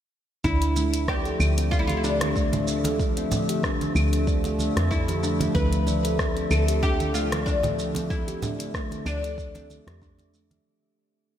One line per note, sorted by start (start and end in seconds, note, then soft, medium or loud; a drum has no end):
0.44 1.34 D2 medium
0.44 10.62 D3 medium
0.44 10.62 F3 medium
0.44 10.62 A3 medium
0.44 0.54 D4 medium
0.44 1.08 E4 medium
0.44 10.62 E5 medium
0.44 kick loud
0.44 shaker soft
0.62 closed hi-hat soft
0.62 shaker soft
0.76 0.86 A3 medium
0.76 muted conga soft
0.76 shaker medium
0.94 closed hi-hat medium
0.94 shaker soft
1.08 1.68 G4 loud
1.08 1.25 D5 medium
1.08 kick loud
1.08 cross-stick medium
1.08 shaker soft
1.25 1.56 A4 medium
1.25 closed hi-hat soft
1.25 shaker soft
1.40 3.26 D2 medium
1.40 claves medium
1.40 shaker medium
1.58 1.71 C4 medium
1.58 closed hi-hat medium
1.58 shaker soft
1.71 1.79 F4 medium
1.71 kick loud
1.71 shaker soft
1.79 1.87 E4 medium
1.87 2.05 F4 medium
1.87 2.03 G4 medium
1.87 closed hi-hat soft
1.87 high conga medium
1.87 shaker soft
1.97 2.04 E4 medium
2.04 2.14 D4 medium
2.04 2.64 D4 medium
2.04 shaker medium
2.21 cross-stick medium
2.21 closed hi-hat medium
2.21 high conga medium
2.21 shaker soft
2.36 2.46 A3 medium
2.36 kick medium
2.36 shaker soft
2.53 closed hi-hat soft
2.53 high conga medium
2.53 low conga medium
2.53 shaker soft
2.68 2.84 D5 medium
2.68 shaker medium
2.84 3.15 A4 medium
2.84 closed hi-hat medium
2.84 muted conga medium
2.84 high conga medium
2.84 shaker soft
3.00 kick loud
3.00 shaker soft
3.17 3.31 C4 medium
3.17 closed hi-hat soft
3.17 high conga soft
3.17 shaker soft
3.32 muted conga medium
3.32 low conga loud
3.32 shaker medium
3.49 3.62 G4 medium
3.49 closed hi-hat medium
3.49 shaker soft
3.63 3.74 D4 medium
3.63 kick loud
3.63 cross-stick medium
3.63 shaker soft
3.81 closed hi-hat soft
3.81 high conga medium
3.81 shaker soft
3.95 4.69 D2 medium
3.95 4.06 A3 medium
3.95 claves medium
3.95 shaker medium
4.13 closed hi-hat medium
4.13 shaker soft
4.27 4.44 D5 medium
4.27 kick loud
4.27 shaker soft
4.44 4.75 A4 medium
4.44 closed hi-hat soft
4.44 muted conga medium
4.44 shaker soft
4.59 high conga medium
4.59 shaker medium
4.77 5.49 F2 medium
4.77 4.91 C4 medium
4.77 cross-stick medium
4.77 closed hi-hat soft
4.77 shaker soft
4.91 5.54 E4 medium
4.91 kick medium
4.91 shaker soft
5.08 5.22 G4 medium
5.08 closed hi-hat soft
5.08 muted conga medium
5.08 shaker soft
5.23 5.33 D4 loud
5.23 shaker medium
5.40 closed hi-hat soft
5.40 muted conga medium
5.40 high conga medium
5.40 shaker soft
5.55 6.45 D2 medium
5.55 5.65 A3 medium
5.55 6.15 B4 loud
5.55 kick loud
5.55 shaker soft
5.73 closed hi-hat soft
5.73 shaker soft
5.87 6.04 D5 medium
5.87 muted conga soft
5.87 shaker medium
6.05 6.35 A4 medium
6.05 closed hi-hat medium
6.05 shaker soft
6.19 kick loud
6.19 cross-stick medium
6.19 shaker soft
6.36 6.50 C4 medium
6.36 closed hi-hat soft
6.36 shaker soft
6.51 8.36 D2 medium
6.51 6.81 A4 loud
6.51 claves medium
6.51 shaker medium
6.68 6.81 G4 medium
6.68 closed hi-hat medium
6.68 shaker soft
6.83 6.93 D4 loud
6.83 7.12 G4 loud
6.83 kick loud
6.83 shaker soft
7.00 closed hi-hat soft
7.00 high conga medium
7.00 shaker soft
7.14 7.25 A3 medium
7.14 7.45 F4 medium
7.14 shaker medium
7.32 cross-stick medium
7.32 closed hi-hat soft
7.32 high conga medium
7.32 shaker soft
7.46 8.10 D4 medium
7.46 7.63 D5 medium
7.46 kick loud
7.46 shaker soft
7.63 7.94 A4 medium
7.63 closed hi-hat soft
7.63 high conga medium
7.63 low conga medium
7.63 shaker soft
7.79 shaker medium
7.95 8.10 C4 medium
7.95 closed hi-hat medium
7.95 muted conga medium
7.95 high conga medium
7.95 shaker soft
8.10 8.70 E4 medium
8.10 kick loud
8.10 shaker soft
8.28 8.41 G4 medium
8.28 closed hi-hat soft
8.28 high conga soft
8.28 shaker soft
8.42 8.52 D4 medium
8.42 muted conga soft
8.42 low conga medium
8.42 shaker medium
8.60 closed hi-hat medium
8.60 shaker soft
8.74 8.84 A3 medium
8.74 kick loud
8.74 cross-stick medium
8.74 shaker soft
8.91 closed hi-hat soft
8.91 high conga medium
8.91 shaker soft
9.06 9.80 D2 medium
9.06 10.30 D4 loud
9.06 9.23 D5 medium
9.06 claves medium
9.06 shaker medium
9.23 9.54 A4 medium
9.23 closed hi-hat medium
9.23 shaker soft
9.38 kick loud
9.38 shaker soft
9.55 9.69 C4 medium
9.55 closed hi-hat soft
9.55 muted conga medium
9.55 shaker soft
9.70 high conga medium
9.70 shaker medium
9.87 10.60 F2 medium
9.87 10.00 G4 medium
9.87 cross-stick medium
9.87 closed hi-hat soft
9.87 shaker soft
10.02 10.12 D4 loud
10.02 kick loud
10.02 shaker soft
10.19 closed hi-hat soft
10.19 muted conga medium
10.19 shaker soft
10.34 10.44 A3 medium
10.34 shaker medium
10.51 closed hi-hat soft
10.51 muted conga medium
10.51 high conga medium
10.51 shaker soft